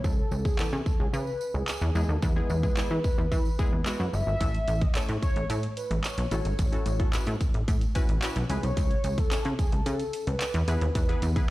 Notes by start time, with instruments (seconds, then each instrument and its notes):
Already playing: synth pluck E3 B3 C#4 E4
0.04 analog synth bass C#2, soft synth lead A4, kick, tambourine
0.31 analog synth bass C#2, tambourine
0.45 soft synth lead G#4, kick, tambourine
0.59 analog synth bass C#3, synth pluck E3 B3 C#4 E4, soft synth lead A4, clap, tambourine
0.72 analog synth bass C#3
0.86 kick, tambourine
1.00 analog synth bass C#2, soft synth lead G#4
1.13 analog synth bass C#3, soft synth lead B4, tambourine
1.27 tambourine
1.41 tambourine
1.54 analog synth bass C#2, soft synth lead G#4
1.68 clap, tambourine
1.82 analog synth bass E2, tambourine
1.95 analog synth bass E2, synth pluck G#3 B3 E4 G#4, tambourine
2.09 analog synth bass D#2, soft synth lead A4
2.22 analog synth bass E2, soft synth lead B4, kick, tambourine
2.36 synth pluck G#3 B3 E4 G#4
2.50 analog synth bass E2, tambourine
2.63 synth pluck G#3 B3 E4 G#4, kick, tambourine
2.77 analog synth bass E3, synth pluck G#3 B3 E4 G#4, clap, tambourine
2.91 analog synth bass E3
3.04 kick, tambourine
3.18 analog synth bass E2
3.32 analog synth bass E3, kick, tambourine
3.45 tambourine
3.59 synth pluck G#3 B3 E4 G#4, kick, tambourine
3.73 analog synth bass E2
3.86 synth pluck G#3 B3 E4 F#4, clap, tambourine
4.00 analog synth bass F#2, tambourine
4.13 analog synth bass G1, soft synth lead E5, tambourine
4.27 analog synth bass G#1, soft synth lead E5
4.41 analog synth bass A1, synth pluck A3 C#4 E4 A4, kick, closed hi-hat, tambourine
4.54 closed hi-hat
4.68 analog synth bass A1, closed hi-hat, tambourine
4.82 soft synth lead D#5, kick, closed hi-hat
4.95 analog synth bass A2, synth pluck A3 C#4 E4 A4, soft synth lead C#5, clap, closed hi-hat, tambourine
5.09 analog synth bass A2, closed hi-hat
5.22 soft synth lead C#5, kick, closed hi-hat, tambourine
5.36 analog synth bass A1, closed hi-hat
5.50 analog synth bass A2, closed hi-hat, tambourine
5.63 closed hi-hat
5.77 soft synth lead B4, closed hi-hat, tambourine
5.91 analog synth bass A1, closed hi-hat
6.04 soft synth lead C#5, clap, closed hi-hat, tambourine
6.18 analog synth bass B1, closed hi-hat, tambourine
6.31 analog synth bass A1, synth pluck C#4 E4 F#4 A4, soft synth lead C#5, closed hi-hat, tambourine
6.45 analog synth bass G#1, closed hi-hat, tambourine
6.59 analog synth bass A1, soft synth lead C#5, kick, closed hi-hat, tambourine
6.72 synth pluck C#4 E4 F#4 A4, closed hi-hat
6.86 analog synth bass A1, closed hi-hat, tambourine
6.99 synth pluck C#4 E4 F#4 A4, kick, closed hi-hat
7.13 analog synth bass A2, synth pluck C#4 E4 F#4 B4, clap, closed hi-hat, tambourine
7.27 analog synth bass A2, closed hi-hat
7.41 kick, closed hi-hat, tambourine
7.54 analog synth bass A1, closed hi-hat
7.68 analog synth bass A2, kick, closed hi-hat, tambourine
7.81 closed hi-hat, tambourine
7.95 synth pluck C#4 E4 F#4 B4, kick, closed hi-hat, tambourine
8.09 analog synth bass A1, closed hi-hat
8.22 synth pluck C#4 E4 F#4 B4, clap, closed hi-hat, tambourine
8.36 analog synth bass B1, closed hi-hat, tambourine
8.50 analog synth bass C#2, synth pluck C#4 E4 G#4 B4, soft synth lead B4, closed hi-hat, tambourine
8.63 analog synth bass C2, soft synth lead C#5, closed hi-hat, tambourine
8.77 analog synth bass C#2, kick, closed hi-hat, tambourine
8.91 closed hi-hat
9.04 analog synth bass C#2, closed hi-hat, tambourine
9.18 soft synth lead A4, kick, closed hi-hat, tambourine
9.31 analog synth bass C#3, synth pluck C#4 E4 C#5 G#5, clap, closed hi-hat, tambourine
9.45 analog synth bass C#3, closed hi-hat
9.59 soft synth lead G#4, kick, closed hi-hat, tambourine
9.72 analog synth bass C#2, soft synth lead A4, closed hi-hat
9.86 analog synth bass C#3, closed hi-hat, tambourine
9.99 closed hi-hat, tambourine
10.13 closed hi-hat, tambourine
10.27 analog synth bass C#2, soft synth lead B4, closed hi-hat
10.41 clap, closed hi-hat, tambourine
10.54 analog synth bass E2, closed hi-hat, tambourine
10.68 analog synth bass E2, synth pluck B3 E4 G#4 B4, closed hi-hat, tambourine
10.81 analog synth bass D#2, soft synth lead B4, closed hi-hat
10.95 analog synth bass E2, kick, closed hi-hat, tambourine
11.09 synth pluck B3 E4 G#4 B4, closed hi-hat
11.22 analog synth bass E2, closed hi-hat, tambourine
11.36 synth pluck B3 E4 G#4 B4, kick, closed hi-hat, tambourine